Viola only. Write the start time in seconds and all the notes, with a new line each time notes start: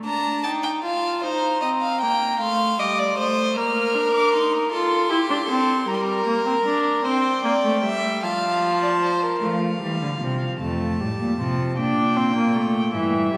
0.05 D4
0.44 D#4
0.84 F4
1.23 D#4
1.63 C4
2.02 A#3
2.41 A3
2.79 G3
3.18 A3
3.56 A#3
3.95 D4
4.33 D#4
4.72 F4
5.10 E4
5.30 D4
5.48 C4
5.88 G3
6.27 A#3
6.46 C4
6.66 D4
7.05 C4
7.44 A#3
7.64 A3
7.83 G3
8.23 F3
9.42 A3
9.81 G3
10.21 F3
10.61 A3
11.00 G3
11.40 F3
11.77 D4
12.16 C4
12.36 A#3
12.55 A3
12.94 E3
13.33 G3